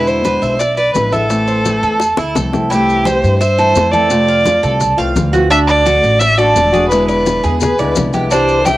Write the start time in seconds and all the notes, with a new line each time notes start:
Already playing: E2 B2 D3 G#3 B3 E4
0.07 C5, high bongo, high conga, maracas
0.23 B2 D3 G#3 E4 B4, high bongo, high conga, maracas
0.42 B1 E5, maracas
0.59 D5, muted steel-string acoustic guitar stroke, high bongo, high conga, maracas
0.77 B4 D5, high bongo, high conga, maracas
0.94 A1 D3 G#3 B3 E4 B4, high bongo, low bongo, high conga, maracas
1.12 D3 G#3 B3 E4 A4 E5, high bongo, high conga, maracas
1.28 E3 A3 C4 E4, high bongo, high conga, maracas
1.48 C5, high bongo, high conga, maracas
1.64 E3 A3 C4 E4, high bongo, high conga, maracas
1.83 E2 A4, maracas
2.00 muted steel-string acoustic guitar stroke, high bongo, high conga, maracas
2.17 D2 E4, low bongo, high conga, maracas
2.35 C2 E3 A3 C4 E4 A4, low bongo, high conga, maracas
2.52 A3 C4 E4, low bongo, high conga, maracas
2.70 C3 E3 A3 C4 E4 G4, high bongo, maracas
2.88 high bongo, high conga, maracas
3.05 E3 A3 C4 E4 G4 C5, high bongo, high conga, maracas
3.24 G2, maracas
3.39 C5 E5, muted steel-string acoustic guitar stroke, high bongo, high conga, maracas
3.58 E3 A3 C4 E4 A4, high bongo, high conga, maracas
3.75 F2 E3 A3 C4 E4, high bongo, low bongo, high conga, maracas
3.91 E3 A3 C4 E4 A4 D5, high bongo, high conga, maracas
4.09 C3 A3 C4 F4, high bongo, maracas
4.28 F5, high bongo, high conga, maracas
4.45 A3 C4 F4, high bongo, high conga, maracas
4.63 C2 A4, high conga, maracas
4.80 muted steel-string acoustic guitar stroke, high bongo, high conga, low conga, maracas
4.97 C2 E3 A3 C4 F4 F5, high bongo, high conga, maracas
5.15 D2 E3 A3 C4 F4, high bongo, low bongo, high conga, maracas
5.33 E3 A3 C4 F4 F#4, high bongo, high conga, maracas
5.50 D3 A3 D4 F#4 E5, high bongo, high conga, maracas
5.67 D5, high bongo, high conga, maracas
5.85 D3 A3 D4 F#4, high bongo, high conga, maracas
6.03 A1, maracas
6.19 D5 E5, muted steel-string acoustic guitar stroke, high bongo, high conga, maracas
6.38 A3 D4 F#4 A4 D5, high bongo, high conga, maracas
6.55 E1 D3 A3 D4 F#4, high bongo, low bongo, high conga, maracas
6.72 A3 D4 F#4 G#4, high conga, maracas
6.89 B2 D3 G#3 B3 E4 B4, high bongo, high conga, maracas
7.08 B4 D5, high bongo, high conga, maracas
7.26 D3 G#3 B3 E4, high bongo, high conga, maracas
7.44 E2 G#4, high conga, maracas
7.61 G#4 B4, muted steel-string acoustic guitar stroke, high bongo, high conga, low conga, maracas
7.78 D2 D3 G#3 B3 E4 D5, high bongo, high conga, low conga, maracas
7.96 C2 D3 G#3 B3 E4, high bongo, low bongo, high conga, maracas
8.13 D3 G#3 B3 E4 G4, high bongo, high conga, maracas
8.30 C3 E3 G3 D4 E4 G4 C5, high bongo, high conga, maracas
8.48 high bongo, high conga, maracas
8.65 E3 G3 D4 E4 G4 E5 G5, high bongo, high conga, maracas